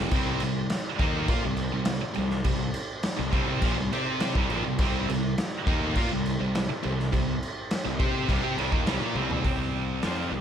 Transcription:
0.00 0.12 F2 medium
0.00 0.12 C3 medium
0.00 0.12 C3 loud
0.00 0.11 F3 medium
0.00 0.12 F3 medium
0.00 0.13 F3 loud
0.00 0.14 C4 loud
0.10 0.40 C2 loud
0.10 0.40 C3 loud
0.10 0.40 G3 loud
0.10 9.39 C4 medium
0.10 0.42 C4 loud
0.10 9.40 G4 medium
0.10 4.75 D5 medium
0.10 kick loud
0.10 crash medium
0.40 0.70 C2 medium
0.40 0.65 C3 medium
0.40 0.65 G3 medium
0.40 crash medium
0.70 snare loud
0.70 crash medium
0.99 1.27 D#2 medium
0.99 1.28 D#3 medium
0.99 1.27 A#3 medium
0.99 1.28 D#4 medium
0.99 kick loud
0.99 crash medium
1.28 1.43 A#2 medium
1.28 1.42 A#3 medium
1.28 1.43 F4 loud
1.28 kick loud
1.28 crash medium
1.42 1.72 C2 medium
1.42 1.67 C3 medium
1.42 1.67 G3 medium
1.47 1.69 C3 medium
1.57 crash medium
1.73 2.01 C2 medium
1.73 1.97 C3 medium
1.73 1.97 G3 medium
1.85 snare loud
1.85 crash medium
2.02 muted distorted electric guitar stroke medium
2.02 muted picked electric bass stroke soft
2.14 2.44 C2 medium
2.14 2.40 C3 medium
2.14 2.40 G3 medium
2.14 crash medium
2.30 snare soft
2.44 2.73 C2 medium
2.44 2.69 C3 medium
2.44 2.69 G3 medium
2.44 kick loud
2.44 crash medium
2.74 crash medium
3.03 snare loud
3.03 crash medium
3.19 3.32 C2 medium
3.19 3.32 C3 medium
3.19 3.33 G3 medium
3.33 3.60 C2 loud
3.33 3.62 C3 loud
3.33 3.62 G3 medium
3.33 3.63 C4 loud
3.33 kick loud
3.33 crash medium
3.62 3.76 A#1 medium
3.62 3.77 A#2 medium
3.62 3.77 F3 loud
3.62 kick loud
3.62 crash medium
3.77 3.92 C2 medium
3.77 3.92 C3 medium
3.77 3.92 G3 medium
3.92 4.33 C3 loud
3.92 4.35 C4 loud
3.92 4.35 G4 loud
3.92 4.35 C5 loud
3.92 crash medium
4.20 snare loud
4.20 crash medium
4.35 4.49 C2 loud
4.35 4.50 C3 medium
4.35 4.50 G3 medium
4.35 kick loud
4.50 4.64 A#1 loud
4.50 4.65 A#2 loud
4.50 4.65 F3 loud
4.50 crash medium
4.65 4.78 C2 medium
4.65 4.80 C3 medium
4.65 4.80 G3 medium
4.78 5.06 C2 loud
4.78 5.08 C3 loud
4.78 5.08 G3 medium
4.78 5.09 C4 loud
4.78 9.41 E5 medium
4.78 kick loud
4.78 crash medium
5.09 5.36 C2 medium
5.09 5.33 C3 medium
5.09 5.33 G3 medium
5.09 crash medium
5.38 snare loud
5.38 crash medium
5.67 5.94 D#2 medium
5.67 5.96 D#3 medium
5.67 5.96 A#3 medium
5.67 5.96 D#4 medium
5.67 kick loud
5.67 crash medium
5.95 6.09 A#2 medium
5.95 6.10 A#3 medium
5.95 6.11 F4 loud
5.95 kick loud
5.95 crash medium
6.11 6.38 C2 medium
6.11 6.34 C3 medium
6.11 6.34 G3 medium
6.26 crash medium
6.40 6.67 C2 medium
6.40 6.63 C3 medium
6.40 6.63 G3 medium
6.55 snare loud
6.55 crash medium
6.70 muted distorted electric guitar stroke medium
6.70 muted picked electric bass stroke soft
6.83 7.11 C2 medium
6.83 7.07 C3 medium
6.83 7.07 G3 medium
6.83 crash medium
6.99 snare soft
7.13 7.40 C2 medium
7.13 7.36 C3 medium
7.13 7.36 G3 medium
7.13 kick medium
7.13 crash medium
7.43 crash medium
7.71 snare loud
7.71 crash medium
7.85 7.99 C2 medium
7.85 7.99 C3 medium
7.85 7.99 G3 medium
7.99 8.27 C3 medium
7.99 8.28 C4 medium
7.99 8.28 G4 loud
7.99 8.28 C5 loud
7.99 kick loud
7.99 crash medium
8.28 8.42 C2 medium
8.28 8.42 C3 loud
8.28 8.41 G3 loud
8.28 kick loud
8.28 crash medium
8.42 8.57 C3 loud
8.42 8.56 C4 medium
8.42 8.56 G4 medium
8.55 8.71 C2 medium
8.55 8.70 C3 medium
8.55 8.71 G3 loud
8.55 crash medium
8.71 8.86 D#2 medium
8.71 8.85 D#3 medium
8.71 8.86 A#3 loud
8.71 kick loud
8.86 9.00 C2 medium
8.86 9.00 C3 medium
8.86 9.00 G3 loud
8.86 snare loud
8.86 crash medium
9.00 9.14 A#2 loud
9.00 9.15 A#3 medium
9.00 9.16 F4 loud
9.15 9.43 C2 medium
9.15 9.43 C3 medium
9.15 9.44 G3 loud
9.15 9.44 C4 loud
9.15 high tom medium
9.30 floor tom medium
9.44 9.99 C2 medium
9.44 10.02 C3 medium
9.44 10.02 G3 medium
9.44 10.41 C4 medium
9.44 10.03 C4 loud
9.44 10.41 G4 soft
9.44 10.41 D5 medium
9.44 kick loud
9.44 open hi-hat medium
10.02 10.31 F2 medium
10.02 10.31 F3 medium
10.02 10.32 C4 medium
10.02 10.32 F4 medium
10.02 snare loud
10.02 open hi-hat medium
10.32 10.41 C2 medium
10.32 10.41 C3 medium
10.32 10.41 G3 medium

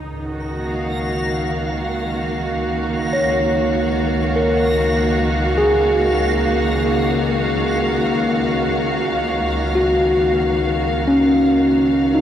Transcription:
0.00 12.21 C#2 medium
0.00 12.21 D#3 medium
0.00 1.69 D#4 medium
0.00 12.21 A#6 medium
0.26 12.21 F#4 medium
0.56 12.21 A#3 medium
0.66 12.21 F5 medium
3.13 5.16 C#5 soft
4.36 6.39 A#4 soft
5.58 7.61 G#4 medium
9.75 11.78 F#4 medium
11.08 12.21 C#4 medium
12.15 12.21 D#4 medium

